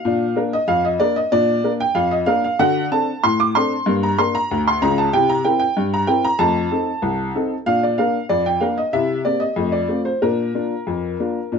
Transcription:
0.00 0.37 F5 medium
0.05 0.32 A#2 medium
0.05 0.24 D4 medium
0.36 0.54 A#3 soft
0.36 0.54 D4 soft
0.36 0.54 A#4 soft
0.53 0.69 D#5 medium
0.68 0.95 F2 medium
0.68 0.84 F5 medium
0.85 1.01 D#5 medium
1.00 1.18 A#3 soft
1.00 1.18 D4 soft
1.00 1.18 A#4 medium
1.00 1.16 D5 medium
1.16 1.32 D#5 medium
1.32 1.59 A#2 medium
1.32 1.51 D4 medium
1.32 1.70 D5 loud
1.64 1.81 A#3 soft
1.64 1.82 D4 soft
1.64 1.82 A#4 soft
1.80 1.96 G5 medium
1.95 2.23 F2 medium
1.95 2.11 F5 medium
2.11 2.28 D#5 medium
2.26 2.45 A#3 medium
2.26 2.45 D4 medium
2.26 2.45 A#4 medium
2.26 2.43 F5 medium
2.44 2.60 F5 medium
2.59 2.86 D3 medium
2.59 2.79 F#4 medium
2.59 2.85 F#5 loud
2.91 3.09 C4 soft
2.91 3.09 D4 soft
2.91 3.10 A4 soft
2.91 3.22 A5 medium
3.24 3.50 A2 medium
3.24 3.39 C6 loud
3.40 3.55 D6 medium
3.55 3.73 C4 soft
3.55 3.73 D4 soft
3.55 3.73 A4 soft
3.55 3.93 C6 medium
3.86 4.13 G2 medium
3.86 4.05 A#3 medium
4.03 4.19 A#5 medium
4.18 4.36 A#3 soft
4.18 4.36 D4 soft
4.18 4.36 A#4 soft
4.18 4.34 C6 medium
4.35 4.60 A#5 medium
4.51 4.77 D2 medium
4.68 4.82 C6 medium
4.82 5.07 C#2 medium
4.82 5.07 C#3 medium
4.82 4.98 A#5 medium
4.98 5.14 A5 medium
5.13 5.40 C3 medium
5.13 5.32 E4 soft
5.13 5.29 G5 loud
5.29 5.45 A#5 medium
5.45 5.62 C4 soft
5.45 5.62 E4 soft
5.45 5.63 A#4 soft
5.45 5.58 G5 medium
5.59 5.85 G5 medium
5.77 6.04 G2 medium
5.94 6.09 A#5 medium
6.07 6.25 C4 soft
6.07 6.25 E4 soft
6.07 6.26 A#4 soft
6.07 6.24 G5 medium
6.24 6.40 A#5 medium
6.39 6.66 F2 medium
6.39 6.58 A3 medium
6.39 7.28 A5 loud
6.71 6.89 C4 soft
6.71 6.89 D#4 soft
6.71 6.89 A4 soft
7.02 7.30 C2 medium
7.35 7.52 C4 soft
7.35 7.53 D#4 soft
7.35 7.53 A4 soft
7.66 7.94 A#2 medium
7.66 7.85 D4 medium
7.66 7.83 F5 medium
7.83 7.99 D5 medium
7.98 8.16 A#3 soft
7.98 8.16 D4 soft
7.98 8.17 A#4 soft
7.98 8.24 F5 medium
8.29 8.57 F2 medium
8.29 8.46 D5 medium
8.46 8.62 G5 medium
8.61 8.79 A#3 soft
8.61 8.79 D4 soft
8.61 8.79 A#4 soft
8.61 8.78 F5 medium
8.78 8.94 D#5 medium
8.93 9.21 C3 medium
8.93 9.13 E4 soft
8.93 9.19 E5 medium
9.25 9.43 A#3 soft
9.25 9.43 C4 soft
9.25 9.43 G4 soft
9.25 9.42 D5 medium
9.40 9.71 D#5 medium
9.56 9.84 F2 medium
9.56 9.76 A3 soft
9.72 9.99 D5 medium
9.88 10.07 A3 soft
9.88 10.07 C4 soft
9.88 10.07 F4 soft
10.05 10.22 C5 medium
10.22 10.50 A#2 medium
10.22 10.42 D4 soft
10.22 11.59 A#4 medium
10.54 10.72 A#3 soft
10.54 10.73 D4 soft
10.54 10.73 F4 soft
10.87 11.14 F2 medium
11.20 11.37 A#3 soft
11.20 11.37 D4 soft
11.20 11.38 F4 soft
11.52 11.59 A#2 medium
11.52 11.59 D4 soft

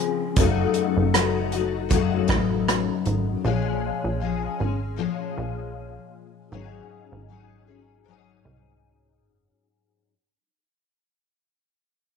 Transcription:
0.00 0.37 C#3 medium
0.00 0.37 F3 medium
0.00 0.38 G#3 medium
0.00 0.38 C4 medium
0.00 0.39 G#4 medium
0.36 0.68 F#1 loud
0.36 1.14 F#2 medium
0.36 1.14 C#3 medium
0.36 1.12 F#3 medium
0.36 1.13 A3 medium
0.36 1.15 D#4 medium
0.36 1.15 F#4 medium
0.36 kick loud
0.36 closed hi-hat medium
0.74 closed hi-hat soft
0.97 2.25 F#1 medium
1.14 1.52 F#3 soft
1.14 1.53 A3 medium
1.14 1.52 D#4 medium
1.14 1.51 F#4 medium
1.14 cross-stick medium
1.14 closed hi-hat medium
1.52 1.90 F#3 soft
1.52 1.91 A3 soft
1.52 1.91 D#4 soft
1.52 1.90 F#4 soft
1.52 closed hi-hat soft
1.89 3.43 F#2 medium
1.89 3.44 C#3 medium
1.89 3.44 F#3 medium
1.89 3.45 A3 medium
1.89 kick medium
1.89 closed hi-hat medium
1.93 3.46 D#4 medium
1.93 3.46 F#4 medium
2.27 2.91 A1 medium
2.27 kick medium
2.27 cross-stick medium
2.27 closed hi-hat soft
2.68 cross-stick medium
2.68 closed hi-hat medium
3.05 3.37 G#1 medium
3.05 closed hi-hat soft
3.44 3.92 A#1 loud
3.44 4.21 A#2 medium
3.44 4.19 F3 medium
3.44 4.21 G#3 medium
3.44 4.22 C#4 medium
3.44 4.23 G#4 medium
4.04 4.49 A#1 medium
4.20 4.59 F3 medium
4.20 4.60 G#3 medium
4.20 4.59 C#4 medium
4.20 4.58 G#4 medium
4.59 5.08 G#1 medium
4.59 4.98 G#3 soft
4.59 4.99 C#4 soft
4.59 4.98 G#4 medium
4.96 6.51 A#2 medium
4.96 6.52 F3 medium
4.96 6.53 G#3 medium
4.96 6.53 C#4 medium
5.01 6.53 G#4 medium
5.38 5.99 A#1 loud
6.52 6.83 G#1 loud
6.52 7.32 G#2 medium
6.52 7.34 C#3 medium
6.52 7.28 F#3 medium
6.52 7.29 C#4 medium
6.52 7.30 D#4 medium
6.52 7.31 G#4 medium
7.12 8.41 G#1 medium
7.29 7.67 F#3 medium
7.29 7.68 C#4 medium
7.29 7.67 D#4 medium
7.29 7.65 G#4 medium
7.67 8.06 F#3 soft
7.67 8.07 C#4 soft
7.67 8.06 D#4 soft
7.67 8.06 G#4 soft
8.04 10.12 G#2 medium
8.04 10.12 F#3 medium
8.04 10.12 C#4 medium
8.09 10.12 D#4 medium
8.09 10.12 G#4 medium
8.45 9.23 C2 medium
9.22 9.53 F#1 medium

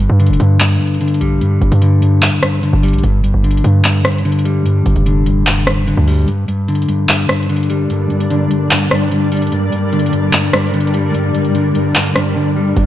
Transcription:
0.00 0.39 G2 medium
0.10 0.31 G2 loud
0.20 0.99 D3 medium
0.20 closed hi-hat medium
0.26 0.39 F1 loud
0.26 closed hi-hat medium
0.33 closed hi-hat medium
0.40 0.59 G2 medium
0.40 1.23 G2 loud
0.40 closed hi-hat medium
0.60 0.79 G2 medium
0.60 clap loud
0.60 closed hi-hat medium
0.80 1.40 G2 medium
0.80 closed hi-hat soft
0.87 closed hi-hat soft
0.94 closed hi-hat medium
1.01 1.81 D3 medium
1.01 closed hi-hat medium
1.08 closed hi-hat medium
1.14 closed hi-hat medium
1.21 1.43 A#1 loud
1.21 2.22 G3 medium
1.21 closed hi-hat medium
1.41 1.60 G2 medium
1.41 1.61 G2 loud
1.41 closed hi-hat medium
1.61 1.71 G1 loud
1.61 2.01 G2 medium
1.61 closed hi-hat soft
1.72 2.30 G2 loud
1.72 closed hi-hat medium
1.82 2.62 D3 medium
1.82 closed hi-hat medium
2.02 2.21 G2 medium
2.02 closed hi-hat medium
2.22 2.41 G2 medium
2.22 clap loud
2.22 closed hi-hat medium
2.43 3.02 G2 medium
2.43 cross-stick loud
2.43 closed hi-hat medium
2.63 3.04 D3 medium
2.63 closed hi-hat medium
2.73 2.95 G1 loud
2.83 3.03 G3 medium
2.83 closed hi-hat medium
2.83 open hi-hat medium
2.88 closed hi-hat medium
2.93 3.03 A#1 medium
2.93 closed hi-hat medium
2.98 closed hi-hat medium
3.03 3.33 G1 loud
3.03 3.22 G2 medium
3.03 closed hi-hat medium
3.24 3.63 G2 medium
3.24 closed hi-hat medium
3.34 3.63 G1 loud
3.44 4.24 D3 medium
3.44 closed hi-hat medium
3.51 closed hi-hat medium
3.57 closed hi-hat medium
3.64 3.83 G2 medium
3.64 4.82 G2 loud
3.64 closed hi-hat medium
3.84 4.04 G2 medium
3.84 clap loud
3.84 closed hi-hat medium
4.05 4.64 G2 medium
4.05 cross-stick medium
4.05 closed hi-hat soft
4.12 closed hi-hat soft
4.18 closed hi-hat medium
4.25 5.05 D3 medium
4.25 closed hi-hat medium
4.32 closed hi-hat medium
4.39 closed hi-hat medium
4.45 5.47 G3 medium
4.45 closed hi-hat medium
4.65 4.85 G2 loud
4.65 closed hi-hat medium
4.86 4.95 G1 loud
4.86 5.25 G2 medium
4.86 closed hi-hat medium
4.96 5.93 F1 loud
4.96 closed hi-hat soft
5.06 5.86 D3 medium
5.06 closed hi-hat medium
5.26 5.46 G2 medium
5.26 closed hi-hat medium
5.47 5.66 G2 medium
5.47 clap loud
5.47 closed hi-hat medium
5.67 6.27 G2 medium
5.67 cross-stick loud
5.67 closed hi-hat medium
5.87 6.28 D3 medium
5.87 closed hi-hat medium
5.97 6.27 D2 loud
6.08 6.28 G3 medium
6.08 open hi-hat medium
6.28 6.47 G2 medium
6.28 12.86 G3 medium
6.28 9.49 D4 medium
6.28 12.86 A#4 medium
6.28 12.73 D5 medium
6.28 closed hi-hat medium
6.48 6.87 G2 medium
6.48 closed hi-hat medium
6.68 7.48 D3 medium
6.68 closed hi-hat medium
6.75 closed hi-hat medium
6.82 closed hi-hat medium
6.89 7.08 G2 medium
6.89 closed hi-hat medium
7.09 7.28 G2 medium
7.09 clap loud
7.09 closed hi-hat medium
7.29 7.89 G2 medium
7.29 cross-stick medium
7.29 closed hi-hat soft
7.36 closed hi-hat medium
7.43 closed hi-hat medium
7.49 8.29 D3 medium
7.49 closed hi-hat medium
7.56 closed hi-hat medium
7.63 closed hi-hat medium
7.70 8.71 G3 medium
7.70 closed hi-hat medium
7.90 8.09 G2 medium
7.90 closed hi-hat medium
8.10 8.50 G2 medium
8.10 closed hi-hat soft
8.20 closed hi-hat medium
8.30 9.11 D3 medium
8.30 closed hi-hat medium
8.51 8.70 G2 medium
8.51 closed hi-hat medium
8.71 8.90 G2 medium
8.71 clap loud
8.71 closed hi-hat medium
8.91 9.51 G2 medium
8.91 cross-stick medium
8.91 closed hi-hat medium
9.12 9.52 D3 medium
9.12 closed hi-hat medium
9.32 9.52 G3 medium
9.32 closed hi-hat medium
9.32 open hi-hat medium
9.37 closed hi-hat medium
9.42 closed hi-hat medium
9.47 closed hi-hat medium
9.52 9.71 G2 medium
9.52 12.86 D4 medium
9.52 closed hi-hat medium
9.72 10.12 G2 medium
9.72 closed hi-hat medium
9.93 10.73 D3 medium
9.93 closed hi-hat medium
9.99 closed hi-hat medium
10.06 closed hi-hat medium
10.13 10.32 G2 medium
10.13 closed hi-hat medium
10.33 10.52 G2 medium
10.33 clap loud
10.33 closed hi-hat medium
10.53 11.13 G2 medium
10.53 cross-stick loud
10.53 closed hi-hat soft
10.60 closed hi-hat soft
10.67 closed hi-hat medium
10.74 11.54 D3 medium
10.74 closed hi-hat medium
10.80 closed hi-hat medium
10.87 closed hi-hat medium
10.94 11.95 G3 medium
10.94 closed hi-hat medium
11.14 11.33 G2 loud
11.14 closed hi-hat medium
11.35 11.74 G2 medium
11.35 closed hi-hat medium
11.45 closed hi-hat soft
11.55 12.35 D3 medium
11.55 closed hi-hat medium
11.75 11.94 G2 medium
11.75 closed hi-hat medium
11.95 12.15 G2 medium
11.95 clap loud
11.95 closed hi-hat medium
12.16 12.76 G2 medium
12.16 cross-stick medium
12.16 closed hi-hat medium
12.36 12.76 D3 medium
12.56 12.77 G3 medium
12.76 12.86 G1 loud
12.76 12.86 G2 medium
12.76 closed hi-hat medium

